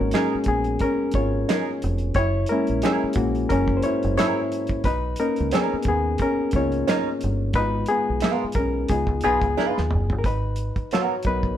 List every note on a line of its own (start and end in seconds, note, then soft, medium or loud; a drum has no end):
0.00 0.12 G#1 medium
0.00 0.26 G#3 medium
0.00 0.27 A#3 soft
0.00 0.12 C#4 medium
0.00 0.27 D#4 medium
0.00 2.17 F#4 medium
0.00 0.15 A#4 medium
0.00 1.15 C#5 loud
0.11 0.34 D#4 medium
0.11 0.34 G#4 medium
0.11 0.47 G#4 medium
0.11 0.35 A#4 medium
0.11 finger snap medium
0.11 snare loud
0.11 closed hi-hat medium
0.16 0.46 C#4 medium
0.35 muted fingered electric bass stroke soft
0.44 0.76 A#1 medium
0.44 kick medium
0.44 closed hi-hat medium
0.48 0.80 B3 medium
0.48 0.82 G#4 medium
0.64 closed hi-hat soft
0.79 0.96 A#4 medium
0.79 kick medium
0.79 closed hi-hat medium
0.84 0.98 C#4 medium
1.11 1.44 G#1 medium
1.11 1.78 C#5 medium
1.11 kick medium
1.11 closed hi-hat medium
1.17 1.79 F4 medium
1.49 1.69 D#4 medium
1.49 1.70 G#4 medium
1.49 1.70 A#4 medium
1.49 finger snap medium
1.49 snare loud
1.49 closed hi-hat medium
1.82 2.12 F1 medium
1.82 closed hi-hat medium
1.98 closed hi-hat soft
2.14 2.44 F#1 loud
2.14 2.48 E4 medium
2.14 2.50 C#5 loud
2.14 kick loud
2.14 closed hi-hat medium
2.46 2.84 A#4 medium
2.46 closed hi-hat medium
2.50 4.82 G#3 medium
2.50 3.17 A#3 medium
2.50 2.82 C#4 medium
2.50 3.84 E4 medium
2.67 2.81 A#1 medium
2.67 closed hi-hat soft
2.82 3.15 C#4 medium
2.82 3.05 E4 medium
2.82 3.14 G#4 medium
2.82 3.05 G#4 medium
2.82 3.05 A#4 medium
2.82 finger snap medium
2.82 snare loud
2.82 closed hi-hat medium
3.04 muted fingered electric bass stroke soft
3.13 3.45 A#1 medium
3.13 3.51 F#4 medium
3.13 kick medium
3.13 closed hi-hat medium
3.18 3.48 A#3 medium
3.35 closed hi-hat soft
3.49 3.80 F#1 loud
3.49 3.76 C#4 medium
3.49 3.78 A#4 medium
3.49 kick medium
3.49 closed hi-hat medium
3.68 kick medium
3.77 3.83 C5 medium
3.82 4.16 E4 medium
3.82 4.16 C#5 medium
3.82 closed hi-hat medium
4.03 4.16 F#1 medium
4.03 closed hi-hat soft
4.17 4.39 E4 medium
4.17 4.67 E4 medium
4.17 4.39 G#4 medium
4.17 4.40 A#4 medium
4.17 4.66 C#5 loud
4.17 finger snap medium
4.17 snare loud
4.17 closed hi-hat medium
4.52 closed hi-hat soft
4.67 kick medium
4.67 closed hi-hat soft
4.84 5.14 B1 medium
4.84 5.17 D#4 medium
4.84 5.20 B4 medium
4.84 kick loud
4.84 closed hi-hat medium
5.16 6.16 A#3 medium
5.16 5.50 A#4 medium
5.16 closed hi-hat medium
5.20 5.51 C#4 medium
5.20 6.17 D#4 medium
5.36 closed hi-hat soft
5.40 5.52 C#2 medium
5.51 5.85 B3 medium
5.51 5.74 C#4 medium
5.51 5.74 D#4 medium
5.51 5.87 G#4 medium
5.51 5.75 A#4 medium
5.51 finger snap medium
5.51 snare loud
5.51 closed hi-hat medium
5.74 muted fingered electric bass stroke soft
5.83 kick medium
5.83 closed hi-hat medium
5.87 6.15 D#2 medium
5.87 6.19 B3 medium
5.87 6.22 G#4 medium
6.18 6.55 A#4 medium
6.18 kick medium
6.18 closed hi-hat medium
6.23 6.53 C#4 medium
6.51 6.83 C#2 medium
6.51 kick medium
6.51 closed hi-hat medium
6.55 6.85 A#3 soft
6.55 6.85 C#4 soft
6.55 6.85 D#4 medium
6.55 7.18 F4 medium
6.55 7.18 C#5 medium
6.72 closed hi-hat soft
6.87 7.08 C#4 medium
6.87 7.09 D#4 medium
6.87 7.09 A#4 medium
6.87 finger snap medium
6.87 snare loud
6.87 closed hi-hat medium
7.21 7.55 G1 medium
7.21 closed hi-hat medium
7.53 7.84 G#1 loud
7.53 8.86 G#3 medium
7.53 7.90 B3 medium
7.53 7.90 B4 loud
7.53 kick loud
7.53 closed hi-hat medium
7.58 7.87 D#4 medium
7.58 8.87 F4 medium
7.86 8.58 G#4 loud
7.86 closed hi-hat medium
7.91 8.53 B3 medium
8.10 8.21 B1 medium
8.20 8.44 B3 medium
8.20 8.44 F4 medium
8.20 8.44 A#4 medium
8.20 finger snap loud
8.20 snare loud
8.20 closed hi-hat medium
8.44 muted fingered electric bass stroke soft
8.52 8.90 A#4 medium
8.52 kick medium
8.52 closed hi-hat medium
8.56 8.85 B1 medium
8.56 8.88 C#4 medium
8.88 9.06 C#2 loud
8.88 9.24 B3 medium
8.88 9.87 D#4 medium
8.88 9.88 F4 medium
8.88 9.23 G#4 medium
8.88 kick medium
8.88 closed hi-hat medium
9.07 9.21 C#2 medium
9.07 kick medium
9.21 9.40 D#4 medium
9.21 9.40 F4 medium
9.21 10.21 G#4 medium
9.21 closed hi-hat medium
9.25 9.41 B1 medium
9.25 10.15 B3 medium
9.25 9.41 B4 medium
9.42 9.55 C#2 medium
9.42 kick loud
9.42 closed hi-hat soft
9.57 9.79 D#4 medium
9.57 9.79 F4 medium
9.57 9.79 B4 medium
9.57 snare medium
9.78 9.90 D#2 medium
9.78 snare medium
9.91 10.12 F#1 medium
9.91 mid tom medium
10.10 10.23 G1 medium
10.10 floor tom medium
10.19 10.24 A#4 medium
10.24 10.70 G#1 medium
10.24 10.89 D#4 medium
10.24 10.94 B4 medium
10.24 kick loud
10.24 closed hi-hat medium
10.56 closed hi-hat medium
10.76 kick medium
10.76 closed hi-hat soft
10.91 11.14 B3 medium
10.91 11.14 F#4 medium
10.91 11.24 F#4 medium
10.91 11.14 A#4 medium
10.91 11.27 C#5 medium
10.91 finger snap medium
10.91 snare loud
10.91 closed hi-hat medium
11.23 11.55 B1 medium
11.23 11.57 F#3 medium
11.23 kick medium
11.23 closed hi-hat medium
11.27 11.57 B3 medium
11.27 11.57 D#4 medium
11.27 11.57 A#4 soft
11.27 11.57 B4 medium
11.43 kick medium